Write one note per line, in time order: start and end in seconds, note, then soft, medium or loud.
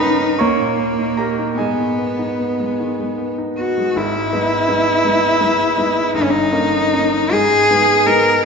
0.00 0.35 G2 medium
0.00 0.42 C#3 medium
0.00 0.42 A#3 medium
0.00 0.12 C#4 soft
0.00 0.42 D#4 medium
0.00 0.32 D#4 medium
0.00 0.42 A#4 medium
0.00 0.37 B4 medium
0.00 0.42 G5 medium
0.00 0.40 A#5 medium
0.00 0.39 B5 medium
0.21 0.40 C#4 soft
0.39 1.55 D#2 medium
0.39 1.58 A#3 medium
0.39 1.14 C#5 medium
0.39 1.14 A#5 medium
0.39 1.17 C#6 medium
0.60 0.90 A#2 soft
0.79 1.10 A#3 soft
0.98 1.30 D#4 soft
1.17 1.50 G4 soft
1.17 1.55 A#4 medium
1.17 1.58 A#5 medium
1.39 1.59 D#4 soft
1.58 3.93 G#2 medium
1.58 3.34 B3 medium
1.58 3.54 G#4 medium
1.58 3.54 D#5 medium
1.58 3.57 G#5 medium
1.79 2.11 D#3 soft
1.98 2.31 B3 soft
2.19 2.51 D#4 soft
2.39 2.71 B3 soft
2.60 2.91 G#3 soft
2.80 3.11 D#3 soft
2.99 3.30 G#3 soft
3.18 3.50 B3 soft
3.38 3.70 D#4 soft
3.58 3.89 B3 soft
3.58 3.99 F#4 medium
3.78 3.96 G#3 soft
3.96 4.31 G#1 medium
3.96 4.32 G#2 medium
3.96 6.15 E4 medium
4.33 4.65 G#3 medium
4.33 4.65 B3 medium
4.33 4.66 D#4 medium
4.69 5.01 G#3 soft
4.69 5.01 B3 soft
4.69 5.01 D#4 medium
5.05 5.38 G#3 medium
5.05 5.38 B3 medium
5.05 5.38 D#4 medium
5.41 5.74 G#3 medium
5.41 5.74 B3 soft
5.41 5.74 D#4 medium
5.77 6.11 G#3 medium
5.77 6.11 B3 medium
5.77 6.11 D#4 medium
6.14 6.51 G1 medium
6.14 6.52 G2 medium
6.14 6.24 D#4 medium
6.22 6.32 C#4 medium
6.30 7.34 D#4 loud
6.52 6.88 A#3 medium
6.52 6.88 C#4 medium
6.52 6.88 D#4 medium
6.93 7.28 A#3 medium
6.93 7.28 C#4 medium
6.93 7.28 D#4 medium
7.32 7.68 G#2 medium
7.32 8.08 G#4 loud
7.70 8.03 G#3 soft
7.70 8.03 B3 medium
7.70 8.03 D#4 medium
8.06 8.39 G#3 medium
8.06 8.39 B3 medium
8.06 8.40 D#4 medium
8.06 8.45 A#4 loud